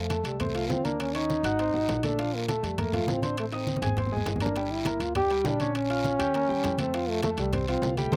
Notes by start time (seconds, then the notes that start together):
Already playing: F2 A3
0.10 A3 A4 A5, high bongo, high conga, high timbale, low timbale, short guiro
0.24 C2 G3, high bongo, high conga, high timbale, short guiro
0.40 A3 C4 C5 C6, high bongo, high conga, low conga, high timbale, long guiro
0.55 F3 F4 F5, high bongo, high conga, high timbale
0.69 D#2 C4, high bongo, low bongo, high conga, low timbale, short guiro
0.84 A#3 D4 A#4 A#5, high bongo, high conga, high timbale, short guiro
1.00 C#4, high bongo, high conga, high timbale, long guiro
1.15 C#4 D#4 C#5 C#6, high conga, high timbale
1.29 high bongo, high conga, low timbale, short guiro
1.43 G#1 F#4 F#5 F#6, high bongo, high conga, high timbale, short guiro
1.59 C4 C5 C6, high bongo, high conga, high timbale, long guiro
1.74 G#1 F#3 F#4 F#5, high conga
1.88 A#1, high bongo, low bongo, high conga, high timbale, low timbale, short guiro
2.03 A3 D4 A4 A5, high bongo, high conga, high timbale, short guiro
2.19 F3 F4 F5, high bongo, high conga, high timbale, long guiro
2.34 A#3, high conga
2.48 A3 A4 A5, high bongo, high conga, high timbale, low timbale, short guiro
2.63 F2 G3, high bongo, high conga, high timbale, short guiro
2.77 A3 A#3 A#4 A#5, high bongo, high conga, low conga, high timbale, long guiro
2.93 F3 F4 F5, high bongo, high conga, low conga, high timbale
3.07 A1 C4, high bongo, low bongo, high conga, low timbale, short guiro
3.22 C4 D4 C5 C6, high bongo, high conga, high timbale, short guiro
3.37 A3, high bongo, high conga, high timbale, long guiro
3.52 C4 D#4 D#5 D#6, high conga, high timbale
3.67 high bongo, high conga, low timbale, short guiro
3.76 high conga
3.82 G#1 G#4 G#5 G#6, high bongo, high timbale, short guiro
3.87 low conga
3.97 C4 C5 C6, high bongo, low conga, high timbale, long guiro
4.06 low conga
4.12 G#3 G#4 G#5
4.17 low conga
4.26 G1, high bongo, low bongo, high timbale, low timbale, short guiro
4.36 low conga
4.40 A#3 D4 A#4 A#5, high bongo, high timbale, short guiro
4.46 low conga
4.56 G3 G4 G5, high bongo, high conga, high timbale, long guiro
4.70 E4, high conga
4.85 A#3 A#4 A#5, high bongo, high conga, high timbale, low timbale, short guiro
5.00 D2 F4, high bongo, high conga, high timbale, short guiro
5.15 D4 G4 D5 D6, high bongo, high conga, low conga, high timbale, long guiro
5.30 G3 G4 G5, high bongo, high conga, high timbale
5.44 A#1 D4, high bongo, low bongo, high conga, low timbale, short guiro
5.60 C#4 C#5 C#6, high bongo, high conga, high timbale, short guiro
5.75 C#4, high bongo, high conga, high timbale, long guiro
5.90 F4 F5 F6, high conga, high timbale
6.04 high bongo, high conga, low timbale, short guiro
6.19 D#2 G4 G5 G6, high bongo, high conga, high timbale, short guiro
6.34 A#3 A#4 A#5, high bongo, high conga, high timbale, long guiro
6.48 D#2 G3 G4 G5, high conga
6.63 F2, high bongo, low bongo, high conga, high timbale, low timbale, short guiro
6.78 A3 C4 A4 A5, high bongo, high conga, high timbale, short guiro
6.94 F3 F4 F5, high bongo, high timbale, long guiro
7.08 A3, high conga
7.22 A3 A4 A5, high bongo, high conga, high timbale, low timbale, short guiro
7.37 C2 G3, high bongo, high conga, high timbale, short guiro
7.52 C4 C5 C6, high bongo, high conga, low conga, high timbale, long guiro
7.68 F3 C4 F4 F5, high bongo, high timbale
7.82 C2, high bongo, low bongo, high conga, low timbale, short guiro
7.97 G3 A3 G4 G5, high bongo, high conga, high timbale, short guiro
8.12 C2 G4 A#4 C5, low bongo, high conga, high timbale, long guiro